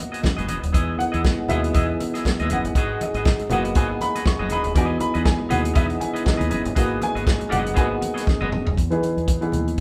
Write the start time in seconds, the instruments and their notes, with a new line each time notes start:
Already playing: grand piano A#3 B3 F#4 D#5 F#5
0.01 muted clean electric guitar stroke
0.12 clean electric guitar B3 F#4 G#4 D#5, closed hi-hat
0.23 muted clean electric guitar stroke, kick, snare, high conga
0.37 fingered electric bass F#1, clean electric guitar B3 F#4 G#4 D#5, closed hi-hat
0.47 fingered electric bass E1, clean electric guitar B3 F#4 G#4 D#5, closed hi-hat, high conga
0.61 fingered electric bass D#1, muted clean electric guitar stroke, closed hi-hat
0.73 fingered electric bass E2, tonewheel organ E3 B3 D#4 G#4, clean electric guitar B3 E4 G#4 D#5, kick, closed hi-hat
0.98 grand piano F#5, muted clean electric guitar stroke, closed hi-hat, muted conga
1.12 fingered electric bass E2, clean electric guitar B3 E4 G#4 D#5, closed hi-hat
1.24 muted clean electric guitar stroke, kick, snare, high conga
1.39 muted clean electric guitar stroke
1.48 fingered electric bass D#2, grand piano G#3 D#4 F#4 E5, clean electric guitar B3 E4 G#4 D#5, closed hi-hat, low conga
1.63 muted clean electric guitar stroke, closed hi-hat
1.73 fingered electric bass E2, clean electric guitar B3 E4 G#4 D#5, grand piano D#5, kick, closed hi-hat, low conga
1.88 muted clean electric guitar stroke
2.00 muted clean electric guitar stroke, closed hi-hat, muted conga
2.14 clean electric guitar B3 E4 G#4 D#5, snare, closed hi-hat
2.25 kick, snare, high conga
2.39 fingered electric bass D#2, clean electric guitar B3 E4 G#4 D#5, closed hi-hat
2.50 fingered electric bass F#1, clean electric guitar B3 E4 G#4 D#5, grand piano F#5, closed hi-hat, high conga
2.64 fingered electric bass G1, muted clean electric guitar stroke, closed hi-hat
2.75 fingered electric bass G#1, tonewheel organ G#3 F#4 G#4, clean electric guitar B3 F#4 G#4 D#5, kick, closed hi-hat
3.01 grand piano D#5, muted clean electric guitar stroke, closed hi-hat, muted conga
3.14 fingered electric bass G#1, clean electric guitar B3 F#4 G#4 D#5, closed hi-hat
3.25 muted clean electric guitar stroke, kick, snare, high conga
3.39 muted clean electric guitar stroke, closed hi-hat
3.50 fingered electric bass F#1, grand piano A#3 B3 F#4 F#5, clean electric guitar B3 F#4 G#4 D#5, closed hi-hat, low conga
3.65 muted clean electric guitar stroke, closed hi-hat
3.75 fingered electric bass G#1, clean electric guitar B3 F#4 G#4 D#5, grand piano G#5, kick, closed hi-hat, muted conga
3.91 muted clean electric guitar stroke
4.01 grand piano B5, muted clean electric guitar stroke, closed hi-hat, muted conga
4.15 clean electric guitar B3 F#4 G#4 D#5, closed hi-hat
4.26 grand piano C#6, muted clean electric guitar stroke, kick, snare, high conga
4.39 fingered electric bass F#1, clean electric guitar B3 F#4 G#4 D#5
4.50 fingered electric bass E1, clean electric guitar B3 F#4 G#4 D#5, grand piano B5, closed hi-hat, high conga
4.64 fingered electric bass D#1, muted clean electric guitar stroke, closed hi-hat
4.75 fingered electric bass E2, tonewheel organ E3 B3 D#4 G#4, grand piano G#3 D#4 F#4 G#5, clean electric guitar D#4 G#4 B4 D#5, kick, closed hi-hat
5.00 grand piano B5, muted clean electric guitar stroke, closed hi-hat, muted conga
5.14 fingered electric bass E2, clean electric guitar D#4 G#4 B4 D#5, closed hi-hat
5.24 grand piano G#5, muted clean electric guitar stroke, kick, snare, high conga
5.38 muted clean electric guitar stroke
5.49 fingered electric bass D#2, grand piano G#3 D#4 F#4 F#5, clean electric guitar D#4 G#4 B4 D#5, closed hi-hat, low conga
5.63 muted clean electric guitar stroke, closed hi-hat
5.74 fingered electric bass E2, clean electric guitar D#4 G#4 B4 D#5, grand piano E5, kick, closed hi-hat, low conga
5.88 muted clean electric guitar stroke, closed hi-hat
6.00 grand piano G#5, muted clean electric guitar stroke, closed hi-hat, muted conga
6.13 clean electric guitar D#4 G#4 B4 D#5, closed hi-hat
6.25 grand piano D#5, muted clean electric guitar stroke, kick, snare, high conga
6.37 fingered electric bass D#2, clean electric guitar D#4 G#4 B4 D#5, closed hi-hat
6.50 fingered electric bass F#1, clean electric guitar D#4 G#4 B4 D#5, closed hi-hat, high conga
6.64 fingered electric bass G1, muted clean electric guitar stroke, closed hi-hat
6.75 fingered electric bass G#1, tonewheel organ G#3 F#4 G#4, grand piano A#3 B3 F#4, clean electric guitar B3 F#4 G#4 D#5, kick, closed hi-hat
7.01 grand piano G#5, muted clean electric guitar stroke, closed hi-hat, muted conga
7.15 fingered electric bass G#1, clean electric guitar B3 F#4 G#4 D#5, closed hi-hat
7.25 muted clean electric guitar stroke, kick, snare, high conga
7.39 muted clean electric guitar stroke, closed hi-hat
7.49 fingered electric bass F#1, clean electric guitar B3 F#4 G#4 D#5, grand piano F#5, closed hi-hat, low conga
7.64 muted clean electric guitar stroke, closed hi-hat
7.74 fingered electric bass G#1, grand piano A#3 B3 F#4 G#5, clean electric guitar B3 F#4 G#4 D#5, kick, closed hi-hat, muted conga
7.89 muted clean electric guitar stroke
8.00 muted clean electric guitar stroke, closed hi-hat, muted conga
8.14 clean electric guitar B3 F#4 G#4 D#5, snare, closed hi-hat
8.26 muted clean electric guitar stroke, kick, snare, high conga
8.41 fingered electric bass F#1, clean electric guitar B3 F#4 G#4 D#5, high tom
8.52 fingered electric bass E1, muted clean electric guitar stroke, mid tom, high conga
8.65 fingered electric bass D#1, muted clean electric guitar stroke, floor tom
8.77 fingered electric bass E2, kick, closed hi-hat
8.90 grand piano E3 B3 D#4 G#4, closed hi-hat
9.03 closed hi-hat, muted conga
9.17 fingered electric bass E2, closed hi-hat
9.28 kick, closed hi-hat, high conga
9.41 grand piano E3 B3 D#4 G#4, closed hi-hat
9.52 fingered electric bass D#2, closed hi-hat, low conga
9.68 closed hi-hat